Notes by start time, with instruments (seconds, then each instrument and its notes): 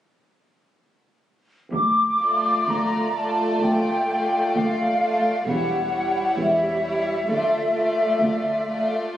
1.72 cello section D2, double bass section D2, flute section D6
2.20 viola section A3, violin section F4 D5
2.67 cello section D2, double bass section D2, flute section A#5
3.15 viola section A3, violin section F4 D5, flute section A5
3.62 cello section D2, double bass section D2, flute section G5
4.09 viola section A3, violin section F4 D5
4.55 cello section D2, double bass section D2, flute section F5
5.01 viola section A3, violin section F4 D5
5.46 double bass section E1, cello section E2, viola section G3, violin section E4 C#5, flute section F#5
5.91 viola section G3, violin section E4 C#5
6.37 double bass section E1, cello section E2, flute section E5
6.82 viola section G3, violin section E4 C#5
7.29 double bass section D2, cello section D2, viola section A3, violin section F4 D5
7.75 viola section A3, violin section F4 D5
8.21 cello section D2, double bass section D2
8.69 viola section A3, violin section F4 D5